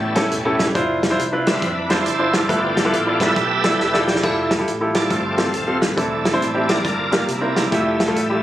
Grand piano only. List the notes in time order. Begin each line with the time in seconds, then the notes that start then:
Already playing: A2
0.15 C#4 E4 G4 A4
0.45 C#4 E4 G4 A4
0.75 D4 E4 F4 C5
1.10 D4 E4 F4 C5
1.32 D4 E4 F4 B4
1.90 D4 E4 F4 C5
2.19 D4 E4 F4 C5
2.49 G2 E4 F4 A4 B4
2.85 E4 F4 A4 B4
3.07 E4 F4 A4 D5
3.64 E4 F4 A4 D5
3.93 E4 F4 A4 D5
4.23 E4 F4 G4 A4
4.58 E4 F4 G4 A4
4.81 E4 F4 G4 A4
5.10 G2
5.37 C4 F4 G4 A4
5.67 C4 F4 G4 A4
5.97 E3 C4 D4 E4 A4
6.33 C4 D4 E4 C5
6.54 C4 D4 E4 G4
6.84 G2
7.12 A#3 D4 F4 G4
7.28 C3
7.41 C4 D4 E4 A#4
7.71 A3 E4 F4 G4
8.07 A3 E4 F4 A4
8.30 G3 E4 F4 G4
8.35 A3